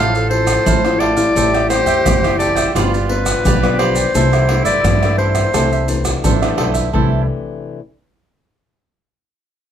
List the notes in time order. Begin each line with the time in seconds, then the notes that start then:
Already playing: A1 A2 F3 C4 E4 A4 C5 F5
0.00 F5
0.15 A4 C5 F5, pandeiro, maracas
0.30 F3 C4 E4 C5, muted cavaquinho stroke, pandeiro
0.47 pandeiro, tamborim, maracas, surdo
0.66 A1 A2 E4 A4 C5 F5, pandeiro, maracas, surdo
0.84 F3 C4 E4 A4 C5 F5, pandeiro, tamborim, maracas
1.00 E4 A4 C5 D5 F5, pandeiro, tamborim
1.16 G3 C4 E4 A4 C5 F5, pandeiro, maracas, surdo
1.36 A1 A2 G4 A4 C5 E5 G5, pandeiro, maracas, surdo
1.54 C5 E5 G5, pandeiro, tamborim, maracas
1.70 G3 C4 E4 C5, muted cavaquinho stroke, pandeiro, tamborim, maracas
1.86 E2 C5 E5 G5, pandeiro, maracas, surdo
2.05 F#1 E3, pandeiro, tamborim, maracas, surdo
2.23 G3 C4 E4 C5 E5 G5, pandeiro, tamborim, maracas
2.39 A4 C5 D5 E5 G5, pandeiro, maracas
2.56 C5 E5 G5, pandeiro, tamborim, maracas, surdo
2.75 G1 G2 F3 B3 D4 F4 G4 B4 D5, pandeiro, tamborim, maracas, surdo
2.94 G4 B4 D5, pandeiro, maracas
3.08 F3 B3 D4 B4, muted cavaquinho stroke, pandeiro
3.26 pandeiro, tamborim, maracas, surdo
3.45 B1 D3 F4 G4 B4 D5, pandeiro, maracas, surdo
3.62 F3 B3 D4 G4 B4 D5, pandeiro, tamborim, maracas
3.79 F4 G4 B4 C5 D5, pandeiro, tamborim
3.96 G4 B4 D5, pandeiro, maracas, surdo
4.14 C2 C3 E3 A3 D4 E4 A4 C5 E5, pandeiro, maracas, surdo
4.33 C5 E5, pandeiro, tamborim, maracas
4.49 E3 A3 D4, muted cavaquinho stroke, pandeiro, tamborim
4.65 G2 C5 D5 E5, pandeiro, maracas, surdo
4.84 G2, pandeiro, tamborim, maracas, surdo
5.03 E3 A3 D4 C5 E5, pandeiro, tamborim, maracas
5.18 A4 C5 E5, pandeiro
5.34 C5 E5, pandeiro, tamborim, maracas, surdo
5.54 C2 C3 E3 A3 D4 A4 C5 E5, pandeiro, tamborim, maracas, surdo
5.72 C5 E5, pandeiro, maracas
5.88 E3 A3 D4, muted cavaquinho stroke, pandeiro, maracas, surdo
6.05 pandeiro, tamborim, maracas, surdo
6.24 A1 G2 D4 A4 C5 E5, pandeiro, maracas, surdo
6.42 E3 A3 D4 C5 E5, pandeiro, tamborim, maracas
6.57 B1 E4 A4 C5 E5, pandeiro, tamborim
6.74 C5 E5, pandeiro, maracas, surdo
6.93 C2 C3 E3 A3 D4 E4 A4 C5 E5, surdo